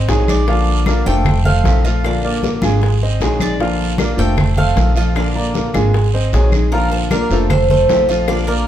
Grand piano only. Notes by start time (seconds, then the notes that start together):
0.09 G#3 G#4 G#5
0.49 F3 F4 F5
0.88 A#3 A#4 D5
1.07 A3 A4 C5
1.46 A3 A4 C5
1.85 F3 F4 F5
2.24 A#3 A#4 D5
2.64 G#3 G#4 G#5
3.03 C4 C5 D#5
3.22 G#3 G#4 G#5
3.60 F3 F4 F5
4.00 A#3 A#4 D5
4.19 A3 A4 C5
4.58 A3 A4 C5
4.97 F3 F4 F5
5.36 A#3 A#4 D5
5.75 G#3 G#4 G#5
6.14 C4 C5 D#5
6.34 G#3 G#4 G#5
6.73 F3 F4 F5
7.12 A#3 A#4 D5
7.32 A3 A4 C5
7.70 A3 A4 C5
8.09 F3 F4 F5
8.48 A#3 A#4 D5